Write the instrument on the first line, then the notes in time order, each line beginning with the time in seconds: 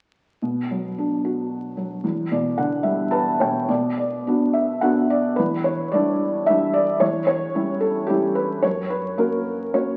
felt piano
0.42 B2
0.71 F#3
0.98 D4
1.25 F#4
1.77 F#3
2.04 E2
2.31 B2 D5
2.58 D3 F#5
2.83 G3 E5
3.11 B4 A5
3.40 B2 C#5 G5
3.69 B2 D5
3.98 D5
4.27 B3 D4 F#4
4.53 E5
4.81 B3 D4 F#4 F#5
5.10 D5
5.36 E2 B4
5.64 C#5
5.92 G3 D4 E4 D5
6.46 G3 D4 E4 E5
6.73 D5
7.00 E2 C#5
7.27 C#5
7.55 G3 C#4 E4
7.80 A4
8.07 G3 C#4 E4 G4
8.35 B4
8.62 F#2 C#5
8.90 B4
9.17 A#3 C#4 F#4 A#4
9.74 A#3 C#4 F#4 C#5